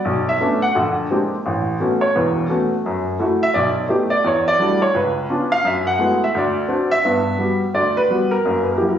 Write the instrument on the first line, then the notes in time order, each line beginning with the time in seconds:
upright piano
Already playing: D5
0.05 B1
0.29 E5
0.41 A3 B3 C#4 D4
0.62 F#5
0.75 A#1 D3
1.10 G#3 A#3 C4 D4 G4
1.46 A1
1.80 A3 B3 C#4 F#4
2.01 C#5
2.15 E1 E2 B4
2.50 A3 B3 C#4 F#4
2.86 F#2
3.19 A3 E4 F#4
3.43 E5
3.54 B1 D5
3.89 A3 B3 D#4 G4
4.10 D5
4.24 E2 C#5
4.48 D5
4.59 G3 A3 D4 E4 F#4
4.82 C#5
4.94 C#2 B4
5.29 B3 C#4 D4 F4
5.52 F5
5.64 F#2 E5
5.87 F#5
5.99 G#3 A3 B3 E4 F#4
6.24 E5
6.35 D2 D5
6.68 C4 D4 F#4
6.91 E5
7.05 G2 B3
7.38 G3 B3 F#4
7.74 D2 D5
7.97 B4
8.09 G3 B3 F#4
8.31 A#4
8.45 F#2 A#3
8.63 B4
8.72 A#4
8.78 F#3 A#3 E4 G4
8.89 A#4